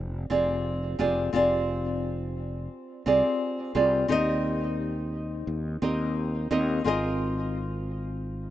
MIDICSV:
0, 0, Header, 1, 3, 480
1, 0, Start_track
1, 0, Tempo, 689655
1, 933, Time_signature, 4, 2, 24, 8
1, 5917, End_track
2, 0, Start_track
2, 0, Title_t, "Nylon-string guitar"
2, 0, Program_c, 0, 24
2, 0, Note_on_c, 0, 60, 91
2, 0, Note_on_c, 0, 65, 79
2, 0, Note_on_c, 0, 67, 79
2, 0, Note_on_c, 0, 68, 75
2, 0, Note_on_c, 0, 74, 91
2, 180, Note_off_c, 0, 60, 0
2, 183, Note_off_c, 0, 65, 0
2, 185, Note_off_c, 0, 67, 0
2, 189, Note_off_c, 0, 68, 0
2, 192, Note_off_c, 0, 74, 0
2, 208, Note_on_c, 0, 60, 82
2, 210, Note_on_c, 0, 65, 69
2, 215, Note_on_c, 0, 68, 69
2, 217, Note_on_c, 0, 67, 68
2, 219, Note_on_c, 0, 74, 80
2, 662, Note_off_c, 0, 60, 0
2, 663, Note_off_c, 0, 65, 0
2, 666, Note_off_c, 0, 67, 0
2, 666, Note_off_c, 0, 68, 0
2, 668, Note_off_c, 0, 74, 0
2, 686, Note_on_c, 0, 60, 77
2, 690, Note_on_c, 0, 65, 73
2, 693, Note_on_c, 0, 67, 72
2, 695, Note_on_c, 0, 68, 79
2, 699, Note_on_c, 0, 74, 96
2, 901, Note_off_c, 0, 60, 0
2, 903, Note_off_c, 0, 65, 0
2, 904, Note_off_c, 0, 67, 0
2, 906, Note_off_c, 0, 68, 0
2, 908, Note_off_c, 0, 74, 0
2, 923, Note_on_c, 0, 60, 87
2, 929, Note_on_c, 0, 65, 87
2, 935, Note_on_c, 0, 67, 84
2, 942, Note_on_c, 0, 68, 79
2, 947, Note_on_c, 0, 74, 99
2, 2100, Note_off_c, 0, 60, 0
2, 2102, Note_off_c, 0, 65, 0
2, 2106, Note_off_c, 0, 67, 0
2, 2109, Note_off_c, 0, 68, 0
2, 2112, Note_off_c, 0, 74, 0
2, 2129, Note_on_c, 0, 60, 76
2, 2133, Note_on_c, 0, 65, 72
2, 2134, Note_on_c, 0, 67, 73
2, 2137, Note_on_c, 0, 68, 75
2, 2141, Note_on_c, 0, 74, 84
2, 2583, Note_off_c, 0, 60, 0
2, 2584, Note_off_c, 0, 65, 0
2, 2585, Note_off_c, 0, 67, 0
2, 2587, Note_off_c, 0, 68, 0
2, 2589, Note_off_c, 0, 74, 0
2, 2608, Note_on_c, 0, 60, 80
2, 2611, Note_on_c, 0, 65, 76
2, 2613, Note_on_c, 0, 67, 75
2, 2617, Note_on_c, 0, 68, 75
2, 2620, Note_on_c, 0, 74, 85
2, 2822, Note_off_c, 0, 60, 0
2, 2823, Note_off_c, 0, 65, 0
2, 2825, Note_off_c, 0, 67, 0
2, 2827, Note_off_c, 0, 68, 0
2, 2828, Note_off_c, 0, 74, 0
2, 2842, Note_on_c, 0, 60, 91
2, 2848, Note_on_c, 0, 63, 83
2, 2853, Note_on_c, 0, 67, 90
2, 2860, Note_on_c, 0, 70, 84
2, 2867, Note_on_c, 0, 75, 107
2, 4019, Note_off_c, 0, 60, 0
2, 4022, Note_off_c, 0, 63, 0
2, 4024, Note_off_c, 0, 67, 0
2, 4028, Note_off_c, 0, 70, 0
2, 4032, Note_off_c, 0, 75, 0
2, 4049, Note_on_c, 0, 60, 78
2, 4053, Note_on_c, 0, 63, 73
2, 4055, Note_on_c, 0, 67, 73
2, 4058, Note_on_c, 0, 70, 75
2, 4063, Note_on_c, 0, 75, 86
2, 4503, Note_off_c, 0, 60, 0
2, 4504, Note_off_c, 0, 63, 0
2, 4506, Note_off_c, 0, 67, 0
2, 4507, Note_off_c, 0, 70, 0
2, 4509, Note_off_c, 0, 75, 0
2, 4529, Note_on_c, 0, 60, 84
2, 4531, Note_on_c, 0, 63, 73
2, 4534, Note_on_c, 0, 67, 79
2, 4537, Note_on_c, 0, 70, 72
2, 4539, Note_on_c, 0, 75, 93
2, 4742, Note_off_c, 0, 60, 0
2, 4744, Note_off_c, 0, 63, 0
2, 4745, Note_off_c, 0, 67, 0
2, 4747, Note_off_c, 0, 70, 0
2, 4747, Note_off_c, 0, 75, 0
2, 4763, Note_on_c, 0, 60, 91
2, 4769, Note_on_c, 0, 65, 87
2, 4775, Note_on_c, 0, 68, 81
2, 4781, Note_on_c, 0, 70, 83
2, 4786, Note_on_c, 0, 75, 100
2, 5917, Note_off_c, 0, 60, 0
2, 5917, Note_off_c, 0, 65, 0
2, 5917, Note_off_c, 0, 68, 0
2, 5917, Note_off_c, 0, 70, 0
2, 5917, Note_off_c, 0, 75, 0
2, 5917, End_track
3, 0, Start_track
3, 0, Title_t, "Fretless electric bass"
3, 0, Program_c, 1, 35
3, 0, Note_on_c, 1, 29, 84
3, 170, Note_off_c, 1, 29, 0
3, 211, Note_on_c, 1, 29, 98
3, 657, Note_off_c, 1, 29, 0
3, 690, Note_on_c, 1, 29, 94
3, 889, Note_off_c, 1, 29, 0
3, 931, Note_on_c, 1, 29, 87
3, 1857, Note_off_c, 1, 29, 0
3, 2133, Note_on_c, 1, 36, 83
3, 2233, Note_off_c, 1, 36, 0
3, 2611, Note_on_c, 1, 36, 94
3, 2809, Note_off_c, 1, 36, 0
3, 2852, Note_on_c, 1, 39, 94
3, 3778, Note_off_c, 1, 39, 0
3, 3809, Note_on_c, 1, 39, 88
3, 4008, Note_off_c, 1, 39, 0
3, 4051, Note_on_c, 1, 39, 95
3, 4498, Note_off_c, 1, 39, 0
3, 4529, Note_on_c, 1, 39, 98
3, 4728, Note_off_c, 1, 39, 0
3, 4770, Note_on_c, 1, 32, 90
3, 5917, Note_off_c, 1, 32, 0
3, 5917, End_track
0, 0, End_of_file